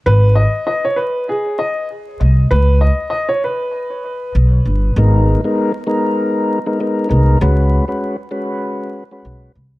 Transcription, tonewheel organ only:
X:1
M:4/4
L:1/16
Q:"Swing 16ths" 1/4=98
K:G#m
V:1 name="Tonewheel organ"
z16 | z16 | [G,B,DA]3 [G,B,DA]2 z [G,B,DA]4- [G,B,DA] [G,B,DA] [G,B,DA]2 [G,B,DA]2 | [G,CFB]3 [G,CFB]2 z [G,CFB]4- [G,CFB] [G,CFB]3 z2 |]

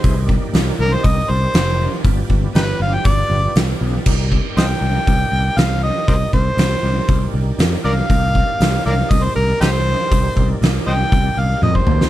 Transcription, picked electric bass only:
X:1
M:4/4
L:1/8
Q:1/4=119
K:Cm
V:1 name="Picked electric bass" clef=bass
C,,2 C,, C,, C,, C,, F,,,2 | G,,, G,,, G,,, G,,, G,,, G,,, C,, =B,,, | C,,2 C,, C,, C,, C,, C,,2 | C,, C,, C,, C,, C,, C,, F,, C,, |
C,,2 C,, C,, C,, C,, C,,2 | C,, C,, C,, C,, C,, C,, F,, E,, |]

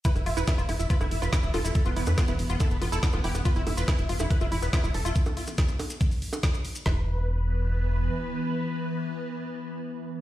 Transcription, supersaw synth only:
X:1
M:4/4
L:1/16
Q:1/4=141
K:C
V:1 name="Supersaw synth"
B E E B E E z E B E E B E E A E | A B, B, B B, B, z B, A B, B, A B, B, G B, | B E E B E E z E B E E B E E A E | z16 |
B16- | B16 |]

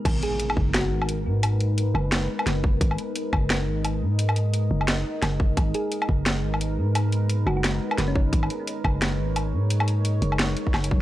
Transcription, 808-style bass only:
X:1
M:4/4
L:1/8
Q:"Swing 16ths" 1/4=174
K:G#m
V:1 name="808-style bass" clef=bass
G,,, z2 F,,,2 G,,,2 G,,- | G,,3 F,,,2 z F,,,2 | G,,, z2 F,,,2 G,,,2 G,,- | G,,3 F,,,2 z F,,,2 |
G,,, z2 F,,,2 G,,,2 G,,- | G,,3 F,,,2 z F,,,2 | G,,, z2 F,,,2 G,,,2 G,,- | G,,3 F,,,2 z F,,,2 |]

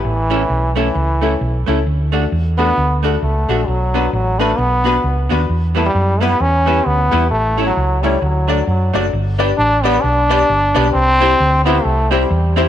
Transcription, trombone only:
X:1
M:4/4
L:1/16
Q:"Swing" 1/4=132
K:D
V:1 name="Trombone"
E,6 E,8 z2 | z6 B,4 z2 A,4 | F,4 F,2 A,2 B,6 z2 | z2 A, G,3 B,2 C4 B,4 |
A,3 F,3 G,2 F,4 F,3 z | z4 D2 B,2 D8 | =C6 B,2 A,2 G,4 z2 |]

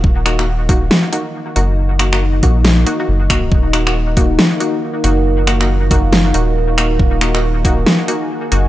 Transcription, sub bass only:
X:1
M:4/4
L:1/8
Q:"Swing 16ths" 1/4=138
K:Ebm
V:1 name="Sub bass" clef=bass
E,,,4 z3 G,,,- | G,,,3 B,,,2 z G,,,2 | E,,,4 z3 G,,,- | G,,,3 G,,,2 E,,,3 |
E,,,4 z3 G,,, |]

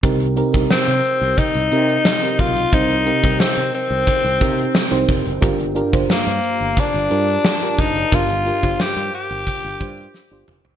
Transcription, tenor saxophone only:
X:1
M:4/4
L:1/8
Q:1/4=89
K:Cm
V:1 name="Tenor saxophone"
z2 C2 E3 F | E2 C C4 z | z2 B,2 D3 E | F2 G G4 z |]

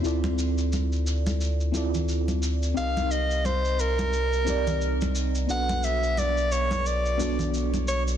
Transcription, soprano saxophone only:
X:1
M:4/4
L:1/8
Q:"Swing 16ths" 1/4=88
K:Clyd
V:1 name="Soprano saxophone"
z8 | =f _e c _B4 z | f e d ^c d2 z c |]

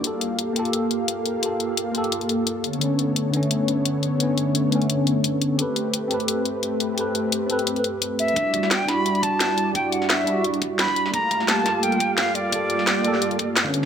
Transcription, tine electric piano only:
X:1
M:4/4
L:1/16
Q:"Swing 16ths" 1/4=173
K:G
V:1 name="Tine electric piano"
[_B,=FGA]6 [B,FGA]8- [B,FGA]2 | [_B,=FGA]6 [B,FGA]8 z2 | [D,A,B,^C]6 [D,A,B,C]8- [D,A,B,C]2 | [D,A,B,^C]6 [D,A,B,C]8- [D,A,B,C]2 |
[CGAB]6 [CGAB]8- [CGAB]2 | [CGAB]6 [CGAB]8- [CGAB]2 | [G,DEF]6 [G,DEF]8- [G,DEF]2 | [G,DEF]6 [G,DEF]8- [G,DEF]2 |
[A,_B,=FG]6 [B,FGA]8- [B,FGA]2 | [_B,=FGA]6 [B,FGA]6- [B,FGA] [D,A,=B,^C]3 |]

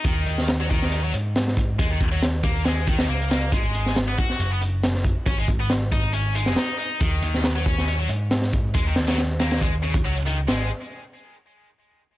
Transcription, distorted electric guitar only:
X:1
M:4/4
L:1/16
Q:"Swing 16ths" 1/4=138
K:D#phr
V:1 name="Distorted electric guitar" clef=bass
D,4 z F, D,3 F, z6 | G, D, z F, z2 A,2 G,2 D,2 A,2 A,2 | G,4 z B, F3 B, z6 | C G, z B, z2 D2 C2 G,2 D2 D2 |
D,4 z F, C3 F, z6 | G, D, z F, z2 A,2 G, z C, z F, z D, z | G,2 z12 z2 |]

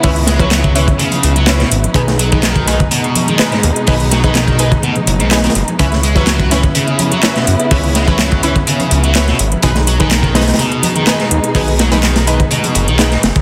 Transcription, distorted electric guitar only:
X:1
M:4/4
L:1/16
Q:1/4=125
K:Bmix
V:1 name="Distorted electric guitar" clef=bass
C, z G, F,3 E, z C,3 F,2 B,, z2 | B,, z F, D,3 D, z B,,3 D,2 G,, z2 | B,, z F, D,3 D, z B,, z2 G,, z D, z2 | C, z G, F,3 E, z C,3 F,2 B,, z2 |
C, z G, F,3 E, z C,3 F,2 B,, z2 | B,, z F, D,3 D, z B,,3 D,2 G,, z2 | B,, z F, D,3 D, z B,,3 D,2 G,, z2 |]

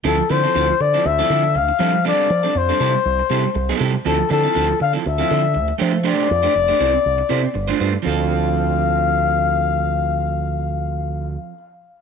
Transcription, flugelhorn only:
X:1
M:4/4
L:1/8
Q:"Swing 16ths" 1/4=120
K:Dm
V:1 name="Flugelhorn"
A c2 d e2 f2 | d2 c4- c z | A A2 f e3 z | d6- d z |
f8- | f8 |]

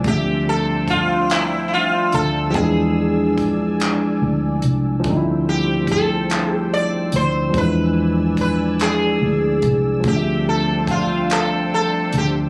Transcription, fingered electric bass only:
X:1
M:6/8
L:1/8
Q:3/8=48
K:Dm
V:1 name="Fingered electric bass" clef=bass
D,,4- D,, D,, | E,,4 D,, C,, | D,,4- D,, D,, | E,,4 D,, C,, |
D,,4- D,, D,, |]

